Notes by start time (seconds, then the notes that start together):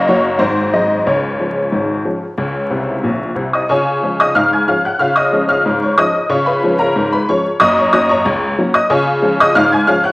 Already playing: F#1 F#2 D#5
0.08 F#3 A#3 F#4 C#5
0.39 G#1 G#2 C5
0.73 F#3 G#3 D#4 D#5
1.07 C#2 C#3 C#5
1.39 F3 G#3 C#4
1.72 G#1 G#2
2.05 F3 G#3 C#4
2.38 C#2 C#3
2.70 C2 C3
3.03 A#1 A#2
3.35 C2 C3
3.53 D#5 D#6
3.69 C#3 F4 C#5 G#5 C#6
4.03 F3 G#3 C#4
4.20 D#5 D#6
4.35 G#2 F5 F6
4.53 G#5 G#6
4.68 F3 G#3 C#4 F5 F6
4.85 F#5 F#6
4.99 C#3 F4 F5 F6
5.16 D#5 D#6
5.33 F3 G#3 C#4
5.49 F5 F6
5.66 G#2
5.83 C#5 C#6
5.98 F3 G#3 C#4 D#5 D#6
6.30 C#3 F4 C#5 C#6
6.46 B4 B5
6.64 F3 G#3 C#4
6.79 A#4 A#5
6.96 G#2
7.13 B4 B5
7.29 F3 G#3 C#4 C#5 C#6
7.60 F#2 A#3 D#5 D#6
7.78 C#5 C#6
7.93 F#3 A#3 C#4 D#5 D#6
8.09 C#5 A#5 C#6
8.25 C#2
8.58 F#3 A#3 C#4
8.74 D#5 D#6
8.90 C#3 F4 C#5 G#5 C#6
9.22 F3 G#3 C#4
9.40 D#5 D#6
9.55 G#2 F5 F6
9.72 G#5 G#6
9.87 F3 G#3 C#4 F5 F6
10.04 F#5 F#6